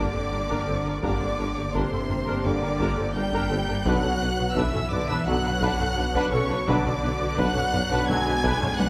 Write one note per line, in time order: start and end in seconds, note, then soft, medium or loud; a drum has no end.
0.00 1.00 G1 medium
0.00 1.02 D3 medium
0.00 0.99 A#3 medium
0.00 0.13 D4 medium
0.00 1.00 D4 medium
0.00 0.99 G4 medium
0.00 0.14 A#4 medium
0.00 0.99 D5 medium
0.00 1.00 D5 medium
0.00 1.03 D6 medium
0.14 0.22 G1 medium
0.14 0.22 C4 medium
0.14 0.21 A4 medium
0.14 taiko low-mid soft
0.32 0.39 G1 medium
0.32 0.40 G1 soft
0.32 0.39 D4 medium
0.32 0.40 A#4 medium
0.49 0.58 G1 medium
0.49 0.66 D4 medium
0.49 0.66 A#4 medium
0.49 taiko medium
0.67 0.75 G1 soft
0.67 0.75 G1 medium
0.67 0.75 C4 medium
0.67 0.74 A4 medium
0.85 0.93 G1 medium
0.85 0.92 D4 medium
0.85 0.92 A#4 medium
1.02 3.87 G1 medium
1.02 1.10 G1 medium
1.02 1.11 G1 medium
1.02 1.28 D3 medium
1.02 1.73 D3 medium
1.02 1.28 G3 medium
1.02 1.28 A#3 medium
1.02 3.82 A#3 medium
1.02 1.28 D4 medium
1.02 1.20 D4 medium
1.02 3.82 D4 medium
1.02 3.82 G4 medium
1.02 1.20 A#4 medium
1.02 3.82 D5 medium
1.02 1.73 D5 medium
1.02 1.73 D6 medium
1.02 taiko loud
1.21 1.29 G1 soft
1.21 1.28 C4 soft
1.21 1.28 A4 soft
1.39 1.46 G1 medium
1.39 1.46 G1 soft
1.39 1.46 D4 medium
1.39 1.46 A#4 soft
1.57 1.64 G1 medium
1.57 1.64 A#3 medium
1.57 1.64 G4 soft
1.74 1.81 G1 medium
1.74 2.43 C3 medium
1.74 1.91 D4 medium
1.74 1.91 A#4 medium
1.74 2.45 C5 medium
1.74 2.45 C6 medium
1.74 taiko medium
1.92 1.99 G1 medium
1.92 1.99 C4 medium
1.92 1.99 A4 medium
1.92 taiko low-mid soft
2.09 2.16 G1 medium
2.09 2.17 G1 medium
2.09 2.16 D4 soft
2.09 2.17 A#4 medium
2.09 taiko low-mid medium
2.27 2.34 G1 medium
2.27 2.44 D4 medium
2.27 2.43 A#4 medium
2.44 2.52 G1 medium
2.44 3.15 D3 medium
2.44 2.70 D3 medium
2.44 2.70 G3 medium
2.44 2.70 A#3 medium
2.44 2.52 C4 medium
2.44 2.70 D4 medium
2.44 2.52 A4 medium
2.44 3.15 D5 medium
2.44 3.15 D6 medium
2.44 taiko low-mid medium
2.62 2.69 G1 medium
2.62 2.69 D4 medium
2.62 2.69 A#4 medium
2.79 2.86 G1 medium
2.79 2.87 G1 medium
2.79 2.96 D4 medium
2.79 2.96 A#4 medium
2.79 taiko medium
2.98 3.05 G1 medium
2.98 3.05 C4 medium
2.98 3.05 A4 medium
2.98 taiko low-mid medium
3.14 3.22 G1 medium
3.14 3.85 G3 medium
3.14 3.23 D4 medium
3.14 3.23 A#4 medium
3.14 3.85 G5 medium
3.14 3.84 G6 medium
3.33 3.40 G1 medium
3.33 3.50 D4 medium
3.33 3.50 A#4 medium
3.33 taiko medium
3.51 3.58 G1 medium
3.51 3.58 C4 medium
3.51 3.58 A4 medium
3.68 3.75 G1 medium
3.68 3.76 D4 medium
3.68 3.76 A#4 medium
3.85 3.92 B1 medium
3.85 3.93 B1 medium
3.85 6.67 B1 medium
3.85 4.11 D3 medium
3.85 4.10 F#3 medium
3.85 4.56 F#3 medium
3.85 6.66 B3 medium
3.85 4.11 B3 medium
3.85 4.11 D4 medium
3.85 4.03 D4 medium
3.85 6.66 F#4 medium
3.85 6.64 B4 medium
3.85 4.03 B4 medium
3.85 4.55 F#5 medium
3.85 4.56 F#6 loud
3.85 taiko medium
4.03 4.10 B1 medium
4.03 4.11 C#4 medium
4.03 4.11 A4 soft
4.21 4.28 B1 medium
4.21 4.29 D4 medium
4.21 4.29 B4 medium
4.39 4.46 B1 medium
4.39 4.46 B3 medium
4.39 4.46 F#4 medium
4.56 4.63 B1 medium
4.56 4.64 B1 medium
4.56 4.92 E3 medium
4.56 4.73 D4 medium
4.56 4.73 B4 medium
4.56 4.91 E5 medium
4.56 4.92 E6 medium
4.56 taiko medium
4.74 4.82 B1 medium
4.74 4.81 C#4 medium
4.74 4.81 A4 medium
4.74 taiko low-mid soft
4.92 4.99 B1 medium
4.92 5.09 D3 medium
4.92 4.99 D4 medium
4.92 4.99 B4 medium
4.92 5.09 D5 medium
4.92 5.09 D6 loud
4.92 taiko low-mid medium
5.07 5.17 B1 medium
5.07 5.27 E3 medium
5.07 5.26 D4 medium
5.07 5.26 B4 medium
5.07 5.26 E5 medium
5.07 5.27 E6 medium
5.27 5.34 B1 medium
5.27 5.35 B1 medium
5.27 5.52 D3 medium
5.27 5.52 F#3 medium
5.27 6.33 F#3 medium
5.27 5.52 B3 medium
5.27 5.34 C#4 medium
5.27 5.52 D4 medium
5.27 5.34 A4 medium
5.27 6.33 F#5 medium
5.27 6.31 F#6 loud
5.27 taiko low-mid medium
5.44 5.53 B1 medium
5.44 5.52 D4 medium
5.44 5.52 B4 medium
5.61 5.69 B1 loud
5.61 5.70 B1 medium
5.61 5.79 D4 medium
5.61 5.79 B4 medium
5.61 taiko medium
5.80 5.87 B1 medium
5.80 5.87 C#4 medium
5.80 5.87 A4 medium
5.80 taiko low-mid medium
5.97 6.04 B1 medium
5.97 6.05 B1 medium
5.97 6.05 D4 medium
5.97 6.05 B4 medium
6.14 6.22 B1 medium
6.14 6.31 D4 loud
6.14 6.31 B4 loud
6.14 taiko medium
6.31 6.39 B1 medium
6.31 6.41 B1 medium
6.31 6.68 C#3 medium
6.31 6.39 C#4 medium
6.31 6.39 A4 medium
6.31 6.68 C#5 medium
6.31 6.67 C#6 loud
6.50 6.57 B1 medium
6.50 6.57 D4 medium
6.50 6.57 B4 medium
6.67 8.89 B1 medium
6.67 6.75 B1 loud
6.67 6.75 B1 medium
6.67 6.92 D3 medium
6.67 7.37 D3 medium
6.67 6.92 F#3 medium
6.67 8.89 B3 medium
6.67 6.93 B3 medium
6.67 6.84 D4 medium
6.67 8.89 D4 medium
6.67 6.93 D4 medium
6.67 8.89 F#4 medium
6.67 6.84 B4 medium
6.67 8.89 D5 medium
6.67 7.37 D5 medium
6.67 7.39 D6 loud
6.67 taiko loud
6.85 6.92 B1 medium
6.85 6.92 C#4 medium
6.85 6.92 A4 medium
7.03 7.10 B1 medium
7.03 7.10 D4 medium
7.03 7.10 B4 medium
7.20 7.27 B1 medium
7.20 7.27 B3 medium
7.20 7.27 F#4 medium
7.37 7.45 B1 loud
7.37 8.09 F#3 loud
7.37 7.55 D4 medium
7.37 7.54 B4 loud
7.37 8.08 F#5 loud
7.37 8.09 F#6 loud
7.37 taiko medium
7.55 7.62 B1 medium
7.55 7.62 C#4 medium
7.55 7.62 A4 medium
7.55 taiko low-mid soft
7.73 7.80 B1 medium
7.73 7.81 B1 medium
7.73 7.80 D4 medium
7.73 7.80 B4 medium
7.73 taiko low-mid medium
7.91 7.98 B1 loud
7.91 8.08 D4 medium
7.91 8.08 B4 loud
8.08 8.15 B1 medium
8.08 8.16 B1 medium
8.08 8.34 D3 medium
8.08 8.34 F#3 medium
8.08 8.79 G#3 loud
8.08 8.34 B3 medium
8.08 8.16 C#4 medium
8.08 8.34 D4 medium
8.08 8.16 A4 medium
8.08 8.79 G#5 loud
8.08 8.78 G#6 loud
8.08 taiko low-mid medium
8.27 8.34 B1 medium
8.27 8.34 D4 medium
8.27 8.34 B4 medium
8.44 8.51 B1 loud
8.44 8.51 B1 medium
8.44 8.61 D4 loud
8.44 8.61 B4 loud
8.44 taiko medium
8.61 8.69 B1 medium
8.61 8.69 C#4 medium
8.61 8.69 A4 medium
8.61 taiko low-mid medium
8.78 8.86 B1 medium
8.78 8.87 B1 medium
8.78 8.89 F#3 loud
8.78 8.86 D4 medium
8.78 8.86 B4 medium
8.78 8.89 F#5 loud
8.78 8.89 F#6 loud
8.78 taiko high medium